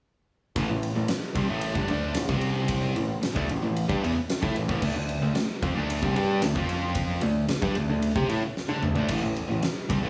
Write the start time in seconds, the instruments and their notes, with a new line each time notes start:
0.56 picked electric bass A1, distorted electric guitar A2 E3, kick, ride
0.69 picked electric bass A1, distorted electric guitar A2 E3
0.83 ride
0.95 picked electric bass A1, distorted electric guitar A2 E3
1.08 muted distorted electric guitar stroke, muted overdriven electric guitar stroke, muted picked electric bass stroke, snare, ride
1.35 picked electric bass C2, distorted electric guitar C3 G3, kick, ride
1.48 picked electric bass A1, distorted electric guitar A2 E3 A3
1.61 ride
1.75 picked electric bass G1, distorted electric guitar G2 D3, kick
1.88 picked electric bass D2, distorted electric guitar D3 A3 D4, ride
2.15 picked electric bass A1, distorted electric guitar A2 E3, snare, ride
2.28 picked electric bass C2, distorted electric guitar C3 G3 C4, kick
2.41 ride
2.68 kick, ride
2.95 picked electric bass A1, distorted electric guitar A2 E3, ride
3.21 muted distorted electric guitar stroke, muted overdriven electric guitar stroke, snare, ride
3.35 picked electric bass D2, distorted electric guitar D3 A3, kick
3.48 picked electric bass A1, distorted electric guitar A2 E3, ride
3.62 picked electric bass A1, distorted electric guitar A2 E3
3.77 ride
3.88 picked electric bass G2, distorted electric guitar G3 D4, kick
4.02 picked electric bass E2, distorted electric guitar E3 B3, ride
4.16 muted overdriven electric guitar stroke, muted distorted electric guitar stroke, muted picked electric bass stroke
4.30 snare, ride
4.42 picked electric bass A2, distorted electric guitar A3 E4, kick
4.55 picked electric bass A1, distorted electric guitar A2 E3, ride
4.69 picked electric bass A1, distorted electric guitar A2 E3, kick
4.82 picked electric bass D2, distorted electric guitar D3 A3, kick, crash
4.96 picked electric bass D2, distorted electric guitar D3 A3
5.09 ride
5.22 picked electric bass D2, distorted electric guitar D3 A3
5.35 muted picked electric bass stroke, muted distorted electric guitar stroke, muted overdriven electric guitar stroke, snare, ride
5.63 picked electric bass F2, distorted electric guitar F3 C4, kick, ride
5.76 picked electric bass D2, distorted electric guitar D3 A3 D4
5.90 ride
6.02 picked electric bass C2, distorted electric guitar C3 G3, kick
6.16 picked electric bass G2, distorted electric guitar G3 D4 G4, ride
6.42 picked electric bass D2, distorted electric guitar D3 A3, snare, ride
6.55 picked electric bass F2, distorted electric guitar F3 C4 F4, kick
6.69 ride
6.95 kick, ride
7.21 picked electric bass D2, distorted electric guitar D3 A3, ride
7.48 muted picked electric bass stroke, muted overdriven electric guitar stroke, muted distorted electric guitar stroke, snare, ride
7.62 picked electric bass G2, distorted electric guitar G3 D4, kick
7.75 picked electric bass D2, distorted electric guitar D3 A3, ride
7.88 picked electric bass D2, distorted electric guitar D3 A3
8.02 ride
8.16 picked electric bass C3, distorted electric guitar C4 G4, kick
8.29 picked electric bass A2, distorted electric guitar A3 E4, ride
8.42 muted overdriven electric guitar stroke, muted picked electric bass stroke, muted distorted electric guitar stroke
8.57 snare
8.69 picked electric bass D3, distorted electric guitar D4 A4, high tom
8.82 picked electric bass D2, distorted electric guitar D3 A3, mid tom
8.96 picked electric bass D2, distorted electric guitar D3 A3, floor tom
9.09 picked electric bass A1, distorted electric guitar A2 E3, kick, ride, crash
9.23 picked electric bass A1, distorted electric guitar A2 E3
9.36 ride
9.49 picked electric bass A1, distorted electric guitar A2 E3
9.62 muted overdriven electric guitar stroke, muted distorted electric guitar stroke, snare, ride
9.89 picked electric bass C2, distorted electric guitar C3 G3, kick, ride
10.02 picked electric bass A1, distorted electric guitar A2 E3 A3